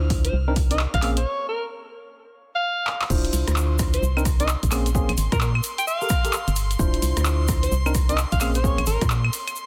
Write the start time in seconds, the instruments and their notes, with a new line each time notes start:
Already playing: fm bass D2, tine electric piano D4 E4 F4 C5, analog synth pad F6
0.10 kick, open hi-hat
0.25 alto saxophone C5, closed hi-hat
0.33 fm bass C2
0.48 tine electric piano C4 D4 D#4 A#4
0.56 kick, open hi-hat
0.71 tine electric piano C4 D4 D#4 A#4, alto saxophone D#5, closed hi-hat
0.79 clap
0.94 fm bass A#1, alto saxophone F5, kick, cross-stick, closed hi-hat
1.02 tine electric piano A#3 C4 C#4 G#4, alto saxophone F5, clap, open hi-hat
1.17 alto saxophone C#5, closed hi-hat
1.49 alto saxophone A#4
2.56 alto saxophone F5
2.87 clap
3.02 clap
3.10 fm bass D1, tine electric piano D4 E4 F4 C5, analog synth pad C6, kick, crash, shaker
3.25 closed hi-hat
3.33 fm bass C2, open hi-hat, shaker
3.48 fm bass D2, cross-stick, closed hi-hat, shaker
3.56 clap, shaker
3.79 kick, cross-stick, open hi-hat, shaker
3.93 alto saxophone C5, closed hi-hat, shaker
4.03 fm bass C2, shaker
4.17 tine electric piano C4 D4 D#4 A#4, claves, shaker
4.25 kick, cross-stick, open hi-hat, shaker
4.40 tine electric piano C4 D4 D#4 A#4, alto saxophone D#5, closed hi-hat, shaker
4.48 clap, shaker
4.63 fm bass A#1, kick, closed hi-hat, shaker
4.71 tine electric piano A#3 C4 C#4 G#4, clap, open hi-hat, claves, shaker
4.86 closed hi-hat, shaker
4.95 tine electric piano A#3 C4 C#4 G#4, kick, shaker
5.09 fm bass A#1, closed hi-hat, claves
5.18 fm bass G#1, open hi-hat, shaker
5.32 fm bass A#2, alto saxophone A#4, kick, cross-stick, closed hi-hat, shaker
5.41 alto saxophone A#4, clap, shaker
5.55 claves
5.64 open hi-hat, shaker
5.78 alto saxophone G5, closed hi-hat, shaker
5.87 alto saxophone F5, shaker
6.01 tine electric piano G4 A4 A#4 F5, shaker
6.09 kick, cross-stick, open hi-hat, shaker
6.25 tine electric piano G4 A4 A#4 F5, closed hi-hat, shaker
6.33 clap, shaker
6.48 fm bass G1, closed hi-hat, shaker
6.56 open hi-hat, shaker
6.71 closed hi-hat, shaker
6.79 fm bass D1, tine electric piano D4 E4 F4 C5, kick, shaker
6.94 closed hi-hat
7.02 fm bass C2, open hi-hat, shaker
7.17 fm bass D2, cross-stick, closed hi-hat, shaker
7.25 clap, shaker
7.48 kick, cross-stick, open hi-hat, shaker
7.63 alto saxophone C5, closed hi-hat, shaker
7.72 fm bass C2, shaker
7.86 tine electric piano C4 D4 D#4 A#4, claves, shaker
7.95 kick, cross-stick, open hi-hat, shaker
8.09 tine electric piano C4 D4 D#4 A#4, alto saxophone D#5, closed hi-hat, shaker
8.18 clap, shaker
8.32 fm bass A#1, alto saxophone F5, kick, closed hi-hat, shaker
8.40 tine electric piano A#3 C4 C#4 G#4, alto saxophone F5, clap, open hi-hat, claves, shaker
8.54 alto saxophone C#5, closed hi-hat, shaker
8.64 tine electric piano A#3 C4 C#4 G#4, kick, shaker
8.78 fm bass A#1, closed hi-hat, claves
8.86 fm bass G#1, alto saxophone A#4, open hi-hat, shaker
9.01 fm bass A#2, kick, cross-stick, closed hi-hat, shaker
9.10 clap, shaker
9.24 claves
9.33 open hi-hat, shaker
9.47 closed hi-hat, claves, shaker
9.56 shaker